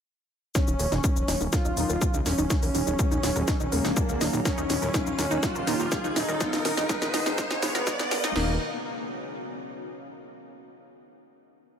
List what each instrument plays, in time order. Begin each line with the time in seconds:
0.55 analog synth pad D#3 F#3 A#3 C#4, analog synth lead C#4, ambient pad C#4, synth arpeggio sound D#4, digital synth lead C#5, kick, snare, riser, shaker
0.68 analog synth bass D#1, synth arpeggio sound D#4, shaker
0.79 analog synth bass D#1, synth arpeggio sound A#4, open hi-hat, shaker
0.85 ambient pad D#4
0.92 analog synth bass D#1, synth arpeggio sound D#4, snare, shaker
1.04 synth arpeggio sound D#4, kick, shaker
1.11 ambient pad D#5
1.16 analog synth bass D#1, synth arpeggio sound A#4, shaker
1.28 analog synth bass D#1, synth arpeggio sound D#4, snare, open hi-hat, shaker
1.41 analog synth bass D#1, synth arpeggio sound D#4, shaker
1.53 analog synth lead F4, synth arpeggio sound A#4, digital synth lead F5, kick, snare, shaker
1.65 analog synth bass D#1, synth arpeggio sound D#4, shaker
1.77 analog synth bass D#1, analog polysynth D#3 A#3 D#4, synth arpeggio sound D#4, open hi-hat, shaker
1.90 analog synth bass D#1, synth arpeggio sound A#4, shaker
2.01 synth arpeggio sound D#4, kick, shaker
2.14 analog synth bass C#2, synth arpeggio sound D#4, shaker
2.26 analog synth bass D#1, analog synth lead C#4, synth arpeggio sound A#4, digital synth lead C#5, snare, open hi-hat, shaker
2.38 analog synth bass D#1, synth arpeggio sound D#4, shaker
2.50 synth arpeggio sound D#4, analog synth pad G#4, kick, snare, shaker
2.63 analog synth bass D#1, synth arpeggio sound A#4, open hi-hat, shaker
2.70 ambient pad G#4
2.75 analog synth bass D#1, synth arpeggio sound D#4, open hi-hat, shaker
2.79 ambient pad F#5
2.87 analog synth bass D#1, synth arpeggio sound D#4, shaker
2.99 synth arpeggio sound A#4, kick, shaker
3.11 analog synth bass D#1, synth arpeggio sound D#4, shaker
3.23 analog synth bass D#1, synth arpeggio sound D#4, snare, open hi-hat, shaker
3.36 analog synth bass D#1, synth arpeggio sound A#4, shaker
3.48 synth arpeggio sound D#4, kick, snare, shaker
3.60 analog synth bass D#1, synth arpeggio sound D#4, shaker
3.72 analog synth bass D#1, analog polysynth C#3 G#3 C#4, analog synth lead A#3, synth arpeggio sound A#4, digital synth lead A#4, open hi-hat, shaker
3.84 analog synth bass D#1, synth arpeggio sound D#4, snare, shaker
3.96 synth arpeggio sound D#4, kick, shaker
4.09 analog synth bass C#2, synth arpeggio sound A#4, shaker
4.21 analog synth bass D#1, synth arpeggio sound D#4, snare, open hi-hat, shaker
4.33 analog synth bass D#1, synth arpeggio sound D#4, shaker
4.45 analog synth pad D#3 A#3 C#4, analog synth lead C#4, synth arpeggio sound A#4, digital synth lead C#5, kick, snare, shaker
4.49 ambient pad D#4
4.58 analog synth bass D#1, synth arpeggio sound D#4, shaker
4.70 analog synth bass D#1, synth arpeggio sound D#4, snare, open hi-hat, shaker
4.82 analog synth bass D#1, synth arpeggio sound A#4, ambient pad D#5, shaker
4.94 synth arpeggio sound D#4, kick, snare, shaker
5.07 analog synth bass D#1, synth arpeggio sound D#4, shaker
5.18 analog synth bass D#1, synth arpeggio sound A#4, snare, open hi-hat, shaker
5.31 analog synth bass D#1, synth arpeggio sound D#4, shaker
5.43 synth arpeggio sound D#4, analog synth lead F4, digital synth lead F5, kick, snare, shaker
5.55 analog synth bass D#1, synth arpeggio sound A#4, shaker
5.67 analog synth bass D#1, analog polysynth D#3 A#3 D#4, synth arpeggio sound D#4, snare, open hi-hat, shaker
5.80 analog synth bass D#1, synth arpeggio sound D#4, shaker
5.92 synth arpeggio sound A#4, kick, snare, shaker
6.04 analog synth bass C#2, synth arpeggio sound D#4, shaker
6.16 analog synth bass D#1, analog synth lead D#4, synth arpeggio sound D#4, digital synth lead D#5, snare, open hi-hat, shaker
6.29 analog synth bass D#1, synth arpeggio sound A#4, shaker
6.40 analog polysynth F3 B3 F4, ambient pad B3, analog synth pad B3 F4 G#4, synth arpeggio sound D#4, kick, snare, shaker
6.47 ambient pad F5
6.53 analog synth bass D#1, synth arpeggio sound D#4, snare, open hi-hat, shaker
6.57 ambient pad G#4
6.65 analog synth bass D#1, synth arpeggio sound A#4, snare, open hi-hat, shaker
6.77 analog synth bass D#1, synth arpeggio sound D#4, snare, shaker
6.89 synth arpeggio sound D#4, kick, snare, shaker
7.02 analog synth bass D#1, synth arpeggio sound A#4, snare, shaker
7.14 analog synth bass D#1, synth arpeggio sound D#4, snare, open hi-hat, shaker
7.26 analog synth bass D#1, synth arpeggio sound D#4, snare, shaker
7.38 synth arpeggio sound A#4, kick, snare, shaker
7.51 analog synth bass D#1, synth arpeggio sound D#4, snare, shaker
7.62 analog synth bass D#1, analog synth lead B3, synth arpeggio sound D#4, digital synth lead B4, snare, open hi-hat, shaker
7.75 analog synth bass D#1, synth arpeggio sound A#4, snare, shaker
7.87 synth arpeggio sound D#4, kick, snare, shaker
7.99 analog synth bass D#1, synth arpeggio sound D#4, snare, shaker
8.11 analog synth bass D#1, synth arpeggio sound A#4, snare, open hi-hat, shaker
8.24 analog synth bass F1, analog polysynth D#3 A#3 D#4, synth arpeggio sound D#4, snare, shaker
8.36 analog synth bass D#1, analog synth pad D#3 A#3 C#4 F#4, analog polysynth D#3 A#3 D#4, analog synth lead A#3, ambient pad C#4, synth arpeggio sound D#4, digital synth lead A#4, snare, crash
8.43 ambient pad F#4
8.51 ambient pad D#5